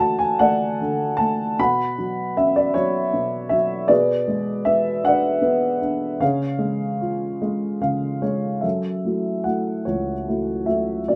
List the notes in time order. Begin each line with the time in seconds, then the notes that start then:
Already playing: D3 A3 A4 D5 F#5
0.00 F#4 A5
0.19 G#5
0.39 A3 A4 D5 F#5
0.81 D3
1.17 A3 A5
1.59 B2 F#5 B5
1.98 F#3
2.37 C#4 E5
2.56 D5
2.74 F#3 F#4 C#5
3.13 B2
3.49 F#3 E5
3.88 B2 G#4 B4 D5
4.28 G#3
4.65 B3 E5
5.04 D4 B4 F#5
5.08 D5
5.42 B3
5.81 D4
6.20 C#3 G#4 C#5 F5
6.59 G#3
7.01 F4
7.42 G#3
7.81 C#3 F5
8.22 G#3 C#5
8.61 F#2 A4 E5
9.05 A3 E4 F#4
9.44 A3 E4 F#4 F#5
9.85 C#2 C#5
10.28 A3 E4 F#4
10.66 A3 E4 F#4 E5
11.08 B2 F#4 D5